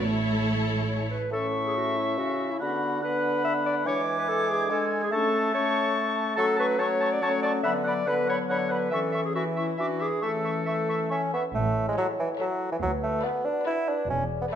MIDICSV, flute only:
0, 0, Header, 1, 2, 480
1, 0, Start_track
1, 0, Key_signature, 3, "major"
1, 0, Tempo, 433526
1, 16, Time_signature, 3, 2, 24, 8
1, 2415, Tempo, 421348
1, 10095, Tempo, 437956
1, 12975, Tempo, 423430
1, 16379, End_track
2, 0, Start_track
2, 0, Title_t, "Flute"
2, 0, Program_c, 0, 73
2, 1466, Note_on_c, 0, 85, 51
2, 2852, Note_off_c, 0, 85, 0
2, 2899, Note_on_c, 0, 83, 47
2, 3368, Note_off_c, 0, 83, 0
2, 3381, Note_on_c, 0, 83, 53
2, 4332, Note_on_c, 0, 86, 56
2, 4349, Note_off_c, 0, 83, 0
2, 5465, Note_off_c, 0, 86, 0
2, 5768, Note_on_c, 0, 85, 53
2, 6235, Note_off_c, 0, 85, 0
2, 6244, Note_on_c, 0, 85, 63
2, 7177, Note_off_c, 0, 85, 0
2, 7210, Note_on_c, 0, 85, 56
2, 7279, Note_off_c, 0, 85, 0
2, 7450, Note_on_c, 0, 85, 55
2, 7518, Note_off_c, 0, 85, 0
2, 7686, Note_on_c, 0, 85, 57
2, 7754, Note_off_c, 0, 85, 0
2, 7928, Note_on_c, 0, 85, 52
2, 7996, Note_off_c, 0, 85, 0
2, 8162, Note_on_c, 0, 85, 55
2, 8230, Note_off_c, 0, 85, 0
2, 8417, Note_on_c, 0, 85, 43
2, 8485, Note_off_c, 0, 85, 0
2, 8641, Note_on_c, 0, 83, 55
2, 8709, Note_off_c, 0, 83, 0
2, 8906, Note_on_c, 0, 83, 51
2, 8974, Note_off_c, 0, 83, 0
2, 9137, Note_on_c, 0, 83, 52
2, 9206, Note_off_c, 0, 83, 0
2, 9387, Note_on_c, 0, 83, 51
2, 9456, Note_off_c, 0, 83, 0
2, 9628, Note_on_c, 0, 83, 54
2, 9696, Note_off_c, 0, 83, 0
2, 9857, Note_on_c, 0, 83, 45
2, 9925, Note_off_c, 0, 83, 0
2, 10106, Note_on_c, 0, 85, 52
2, 10172, Note_off_c, 0, 85, 0
2, 10334, Note_on_c, 0, 85, 47
2, 10400, Note_off_c, 0, 85, 0
2, 10567, Note_on_c, 0, 85, 48
2, 10633, Note_off_c, 0, 85, 0
2, 10807, Note_on_c, 0, 85, 45
2, 10872, Note_off_c, 0, 85, 0
2, 11055, Note_on_c, 0, 86, 48
2, 11121, Note_off_c, 0, 86, 0
2, 11280, Note_on_c, 0, 86, 38
2, 11346, Note_off_c, 0, 86, 0
2, 11509, Note_on_c, 0, 85, 42
2, 11575, Note_off_c, 0, 85, 0
2, 11765, Note_on_c, 0, 85, 41
2, 11831, Note_off_c, 0, 85, 0
2, 12011, Note_on_c, 0, 85, 41
2, 12077, Note_off_c, 0, 85, 0
2, 12250, Note_on_c, 0, 85, 42
2, 12315, Note_off_c, 0, 85, 0
2, 12476, Note_on_c, 0, 85, 44
2, 12542, Note_off_c, 0, 85, 0
2, 12741, Note_on_c, 0, 85, 39
2, 12807, Note_off_c, 0, 85, 0
2, 16379, End_track
0, 0, End_of_file